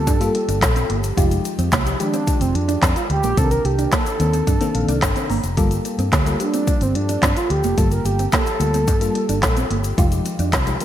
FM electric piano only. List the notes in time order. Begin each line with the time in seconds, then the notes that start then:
Already playing: G3 A#3 F4 A4
0.20 G3 A#3 F4 A4
1.17 F3 G#3 D#4 G4
1.86 F3 G#3 D#4 G4
1.99 D#3 F3 G#3 G4
3.37 D#3 C4 D4 A4
3.44 A#4
4.20 D#3 A#3 C4 D4
4.61 D#3 A#3 C4 D4
4.75 F5
5.03 G5
5.30 A#5
5.57 G3 A#3 F4 A4
6.26 G3 A#3 F4 A4
6.40 G3 A#3 F4 G4
6.47 A4
7.77 G3 A#3 F4 A4
8.60 G3 A#3 F4 A4
9.01 G3 A#3 F4 A4
9.97 F3 G#3 D#4 G4
10.66 F3 G#3 D#4 G4
10.80 D#3 F3 G#3 A#4